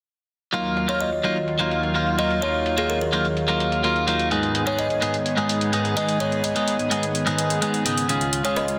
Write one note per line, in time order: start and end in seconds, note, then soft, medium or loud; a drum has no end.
0.53 4.27 D#2 medium
0.53 4.28 D#3 medium
0.53 0.86 F#3 medium
0.53 4.28 F#3 medium
0.53 0.86 A#3 medium
0.53 0.86 D#4 medium
0.53 4.28 F4 medium
0.53 0.86 F4 medium
0.53 closed hi-hat soft
0.65 closed hi-hat soft
0.77 closed hi-hat medium
0.88 1.09 F#3 medium
0.88 1.09 A#3 medium
0.88 1.09 D#4 medium
0.88 1.10 F4 medium
0.88 0.98 C#5 medium
0.88 closed hi-hat soft
1.01 1.14 D#5 medium
1.01 closed hi-hat soft
1.12 closed hi-hat soft
1.23 1.37 F#3 medium
1.23 1.37 A#3 medium
1.23 1.37 D#4 medium
1.23 1.37 F4 medium
1.23 closed hi-hat medium
1.36 closed hi-hat soft
1.48 closed hi-hat soft
1.59 1.92 F#3 medium
1.59 1.92 A#3 medium
1.59 1.92 D#4 medium
1.59 1.92 F4 medium
1.59 closed hi-hat soft
1.71 closed hi-hat medium
1.83 closed hi-hat soft
1.94 2.15 F#3 medium
1.94 2.16 A#3 medium
1.94 2.16 D#4 medium
1.94 2.16 F4 medium
1.94 closed hi-hat soft
2.07 closed hi-hat soft
2.18 2.39 F#3 medium
2.18 2.39 A#3 medium
2.18 2.40 D#4 medium
2.18 2.40 F4 medium
2.18 2.32 D#5 medium
2.18 closed hi-hat medium
2.30 closed hi-hat soft
2.41 2.75 F#3 medium
2.41 2.75 A#3 medium
2.41 2.75 D#4 medium
2.41 2.75 F4 medium
2.41 2.75 C#5 medium
2.41 closed hi-hat soft
2.54 closed hi-hat soft
2.66 closed hi-hat medium
2.77 2.98 F#3 medium
2.77 2.98 A#3 medium
2.77 2.98 D#4 medium
2.77 2.99 F4 medium
2.77 2.87 G#4 medium
2.77 closed hi-hat soft
2.89 2.97 A#4 medium
2.89 closed hi-hat soft
3.01 3.09 A#4 medium
3.01 closed hi-hat soft
3.12 3.26 F#3 medium
3.12 3.26 A#3 medium
3.12 3.26 D#4 medium
3.12 3.26 F4 medium
3.12 closed hi-hat medium
3.25 closed hi-hat soft
3.37 closed hi-hat soft
3.48 3.81 F#3 medium
3.48 3.81 A#3 medium
3.48 3.81 D#4 medium
3.48 3.81 F4 medium
3.48 closed hi-hat soft
3.60 closed hi-hat medium
3.72 closed hi-hat soft
3.83 4.04 F#3 medium
3.83 4.05 A#3 medium
3.83 4.05 D#4 medium
3.83 4.05 F4 medium
3.83 closed hi-hat soft
3.96 closed hi-hat soft
4.07 4.28 F#3 medium
4.07 4.28 A#3 medium
4.07 4.28 D#4 medium
4.07 4.29 F4 medium
4.07 closed hi-hat medium
4.19 closed hi-hat soft
4.30 4.63 G#2 medium
4.30 8.05 G#2 medium
4.30 8.05 D#3 medium
4.30 4.64 G#3 medium
4.30 4.64 B3 medium
4.30 8.05 B3 medium
4.30 4.64 D#4 medium
4.30 8.05 G#4 medium
4.30 4.64 G#4 medium
4.30 closed hi-hat soft
4.43 closed hi-hat soft
4.55 closed hi-hat medium
4.66 4.87 G#2 medium
4.66 4.87 G#3 medium
4.66 4.87 B3 medium
4.66 4.87 D#4 medium
4.66 4.87 G#4 medium
4.66 4.76 C#5 medium
4.66 closed hi-hat soft
4.79 4.92 D#5 medium
4.79 closed hi-hat soft
4.90 closed hi-hat soft
5.01 5.15 G#2 medium
5.01 5.15 G#3 medium
5.01 5.15 B3 medium
5.01 5.15 D#4 medium
5.01 5.15 G#4 medium
5.01 closed hi-hat medium
5.14 closed hi-hat soft
5.26 closed hi-hat soft
5.37 5.70 G#2 medium
5.37 5.70 G#3 medium
5.37 5.70 B3 medium
5.37 5.70 D#4 medium
5.37 5.70 G#4 medium
5.37 closed hi-hat soft
5.49 closed hi-hat medium
5.61 closed hi-hat soft
5.72 5.93 G#2 medium
5.72 5.94 G#3 medium
5.72 5.94 B3 medium
5.72 5.94 D#4 medium
5.72 5.94 G#4 medium
5.72 closed hi-hat soft
5.85 closed hi-hat soft
5.96 6.17 G#3 medium
5.96 6.17 B3 medium
5.96 6.18 D#4 medium
5.96 6.18 G#4 medium
5.96 6.10 D#5 medium
5.96 closed hi-hat medium
6.09 closed hi-hat soft
6.19 6.52 G#2 medium
6.19 6.53 G#3 medium
6.19 6.53 B3 medium
6.19 6.53 D#4 soft
6.19 6.53 G#4 medium
6.19 6.34 C#5 medium
6.19 closed hi-hat soft
6.32 closed hi-hat soft
6.44 6.91 D#5 medium
6.44 closed hi-hat medium
6.55 6.76 G#2 medium
6.55 6.76 G#3 medium
6.55 6.76 B3 medium
6.55 6.76 D#4 medium
6.55 6.77 G#4 medium
6.55 closed hi-hat soft
6.68 closed hi-hat soft
6.79 closed hi-hat soft
6.90 7.04 G#2 medium
6.90 7.04 G#3 medium
6.90 7.04 B3 medium
6.90 7.04 D#4 medium
6.90 7.04 G#4 medium
6.90 closed hi-hat medium
7.03 closed hi-hat soft
7.15 closed hi-hat soft
7.26 7.59 G#2 medium
7.26 7.59 G#3 medium
7.26 7.59 B3 medium
7.26 7.59 D#4 medium
7.26 7.59 G#4 medium
7.26 closed hi-hat soft
7.38 closed hi-hat medium
7.50 closed hi-hat soft
7.61 7.82 G#2 medium
7.61 7.83 G#3 medium
7.61 7.83 B3 medium
7.61 7.83 D#4 medium
7.61 7.83 G#4 medium
7.61 closed hi-hat soft
7.74 closed hi-hat soft
7.85 8.06 C#3 medium
7.85 8.06 G#3 medium
7.85 8.06 B3 medium
7.85 8.06 D#4 medium
7.85 8.07 G#4 medium
7.85 closed hi-hat medium
7.97 closed hi-hat soft
8.08 8.79 C#2 medium
8.08 8.41 C#3 medium
8.08 8.79 C#3 medium
8.08 8.79 G#3 medium
8.08 8.42 G#3 medium
8.08 8.42 C#4 medium
8.08 8.79 F4 medium
8.08 8.42 F4 medium
8.08 8.42 G#4 medium
8.08 closed hi-hat soft
8.21 closed hi-hat soft
8.33 closed hi-hat medium
8.44 8.65 C#3 medium
8.44 8.65 G#3 medium
8.44 8.65 C#4 medium
8.44 8.65 F4 medium
8.44 8.66 G#4 medium
8.44 8.54 C#5 medium
8.44 closed hi-hat soft
8.56 8.70 D#5 medium
8.56 cross-stick medium
8.56 closed hi-hat soft
8.68 closed hi-hat soft